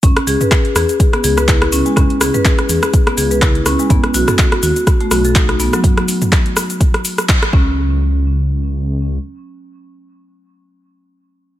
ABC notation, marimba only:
X:1
M:4/4
L:1/16
Q:"Swing 16ths" 1/4=124
K:C#m
V:1 name="Marimba"
C z G B G z G z2 B, G B E z C G, | C z G B G z G z2 B, G B E z C G, | B, z F A F z F z2 A, F A D z B, F, | z12 z2 C2- |
C2 z12 z2 | z16 |]